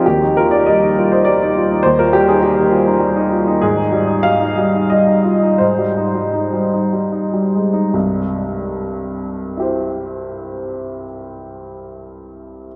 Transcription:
\new Staff \with { instrumentName = "Upright piano" } { \time 3/4 \key c \minor \tempo 4 = 84 << { g'8 bes'16 d''16 ees''8. c''16 d''4 | c''16 bes'16 g'16 aes'16 g'4. r8 | aes'4 f''4 ees''4 | c''2~ c''8 r8 |
r2 <e' g' c''>4~ | <e' g' c''>2. | } \\ { ees,16 ees'16 f'16 ees'16 g16 ees'16 f'16 ees'16 g16 ees'16 f'16 ees'16 | ees,16 f'16 g16 ees'16 g16 ees'16 f'16 ees'16 g16 ees'16 f'16 ees'16 | aes,16 ees'16 g16 ees'16 g16 ees'16 g16 ees'16 g16 ees'16 f'16 ees'16 | aes,16 g16 ees'16 g16 ees'16 g16 ees'16 g16 ees'16 g16 aes16 ees'16 |
<c, g,>2.~ | <c, g,>2. | } >> }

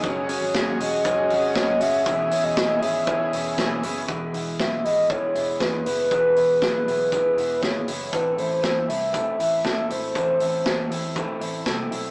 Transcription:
<<
  \new Staff \with { instrumentName = "Soft synth lead" } { \time 4/4 \key e \major \tempo 4 = 119 r4. dis''2 e''8~ | e''8. dis''8. e''4. r4 | r4 e''8 dis''8 cis''4 b'8 b'8~ | b'2. cis''4 |
b'8 c''8 c''8 e''2 c''8~ | c''2~ c''8 r4. | }
  \new Staff \with { instrumentName = "Transistor combo organ" } { \time 4/4 \key e \major <cis' fis' gis'>1 | <cis' e' gis'>1 | r1 | r1 |
r1 | r1 | }
  \new Staff \with { instrumentName = "Clean electric guitar" } { \time 4/4 \key e \major fis8 cis'8 e'16 fis'16 gis'8 cis'8 fis'8 cis'8 fis'8 | e8 e'8 b'8 gis'8 e'8 b'8 e'8 b'8 | <e gis'>8 e'8 gis'8 e'8 gis'8 e'8 gis'8 e'8 | <e gis'>8 e'8 gis'8 e'8 gis'8 e'8 gis'8 e'8 |
<a, a'>8 e'8 a'8 e'8 a'8 e'8 a'8 e'8 | <a, a'>8 e'8 a'8 e'8 a'8 e'8 a'8 e'8 | }
  \new Staff \with { instrumentName = "Clean electric guitar" } { \time 4/4 \key e \major <fis gis cis' gis'>8 <gis cis' gis'>8 <fis gis cis' gis'>8 <gis cis' gis'>8 <fis gis cis' gis'>8 <gis cis' gis'>8 <fis gis cis' gis'>8 <gis cis' gis'>8 | <e b cis' gis'>8 <b cis' gis'>8 <e b cis' gis'>8 <b cis' gis'>8 <e b cis' gis'>8 <b cis' gis'>8 <e b cis' gis'>8 <b cis' gis'>8 | <e gis b e'>8 <gis b e'>8 <e gis b e'>8 <gis b e'>8 <e gis b e'>8 <gis b e'>8 <e gis b e'>8 <gis b e'>8 | <e gis b e'>8 <gis b e'>8 <e gis b e'>8 <gis b e'>8 <e gis b e'>8 <gis b e'>8 <e gis b e'>8 <gis b e'>8 |
<a, e a c' e'>8 <a c' e'>8 <e a c' e'>8 <a c' e'>8 <a, e a c' e'>8 <a c' e'>8 <e a c' e'>8 <a c' e'>8 | <a, e a c' e'>8 <a c' e'>8 <e a c' e'>8 <a c' e'>8 <a, e a c' e'>8 <a c' e'>8 <e a c' e'>8 <a c' e'>8 | }
  \new Staff \with { instrumentName = "Picked electric bass" } { \clef bass \time 4/4 \key e \major fis,,8. gis,,16 gis,,8 e,,8 fis,,8 gis,,4 fis,,8 | e,,8 r16 e,,8. gis,,8. r16 e,,8 b,,8 fis,,8 | e,,8 e,,8 b,,8 gis,,8. r16 e,,8 e,8 fis,,8 | e,,8 e,,8 b,,8 b,,8. r16 e,,8 gis,,8 fis,,8 |
a,,8 a,,8 e,8 c,8. r16 a,,8 a,8 gis,,8 | a,,8 a,,8 e,8 e,8. r16 a,,8 c,8 b,,8 | }
  \new DrumStaff \with { instrumentName = "Drums" } \drummode { \time 4/4 <hh bd>8 hho8 <hh bd sn>8 hho8 <hh bd>8 hho8 <hh bd sn>8 hho8 | <hh bd>8 hho8 <hh bd sn>8 hho8 <hh bd>8 hho8 <hh bd sn>8 hho8 | <hh bd>8 hho8 <hh bd sn>8 hho8 <hh bd>8 hho8 <hh bd sn>8 hho8 | <hh bd>8 hho8 <hh bd sn>8 hho8 <hh bd>8 hho8 <hh bd sn>8 hho8 |
<hh bd>8 hho8 <hh bd sn>8 hho8 <hh bd>8 hho8 <bd sn>8 hho8 | <hh bd>8 hho8 <hh bd sn>8 hho8 <hh bd>8 hho8 <hh bd sn>8 hho8 | }
>>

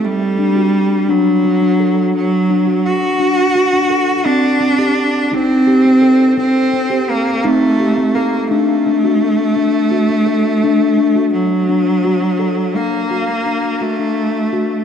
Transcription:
<<
  \new Staff \with { instrumentName = "Steel tongue drum" } { \time 6/8 \tempo 4. = 57 << { r8 d'16 fis'8 r16 d'8 fis'16 d'16 a'8 | r8 d'16 fis'8 r16 d'8 fis'16 d'16 a'8 | r8 c'16 g'8 r16 ees'8 g'16 c'16 a'8 | r8 c'16 g'8 r16 ees'8 g'16 c'16 a'8 |
r8 d'16 fis'8 r16 d'8 fis'16 d'16 a'8 | r8 d'16 fis'8 r16 d'8 fis'16 d'16 a'8 | d'8 fis'8 d'8 fis'16 d'8 r16 fis'8 | } \\ { r2. | r2. | c'4. c'4. | c'4. c'4. |
d'4. r4. | d'4. r4. | r2. | } >> }
  \new Staff \with { instrumentName = "Cello" } { \time 6/8 g4. fis4. | fis4 fis'2 | d'4. c'4. | c'4 bes8 a4 bes8 |
a2.~ | a4 fis2 | bes4. a4. | }
>>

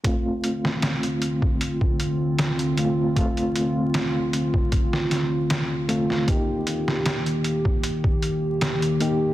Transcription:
<<
  \new Staff \with { instrumentName = "Reed electric piano" } { \time 4/4 \key d \phrygian \tempo 4 = 77 <a c' f'>2.~ <a c' f'>8 <a c' f'>8 | <a c' f'>2.~ <a c' f'>8 <a c' f'>8 | <bes ees' g'>2.~ <bes ees' g'>8 <bes ees' g'>8 | }
  \new Staff \with { instrumentName = "Analog synth pad" } { \time 4/4 \key d \phrygian <d c' f'>1~ | <d c' f'>1 | <ees bes g'>1 | }
  \new DrumStaff \with { instrumentName = "Drums" } \drummode { \time 4/4 <hh bd>8 hh16 sn16 <hh sn>16 hh16 hh16 bd16 hh16 bd16 hh8 <hh sn>16 hh16 hh8 | <hh bd>16 hh16 hh8 <hh sn>8 hh16 bd16 <hh bd>16 sn16 <hh sn>8 <hh sn>8 hh16 sn16 | <hh bd>8 hh16 sn16 <hh sn>16 hh16 hh16 bd16 hh16 bd16 hh8 <hh sn>16 hh16 hh8 | }
>>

